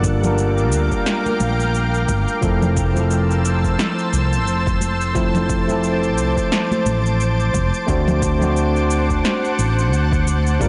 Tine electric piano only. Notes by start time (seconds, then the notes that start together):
Already playing: G3 A#3 D4 F4 A#4
0.21 G3 A#3 D4
0.25 F4 A#4
2.41 F3 A3 C4 E4 A4
2.94 F3 A3 C4
2.98 E4 A4
5.14 F3 A3 C4 E4 A4
5.66 F3 A3 C4
5.71 E4 A4
7.87 A3 C4 D4 F#4 C5
8.39 A3 C4 D4
8.44 F#4 C5
10.60 G3 A#3 D4 F4 A#4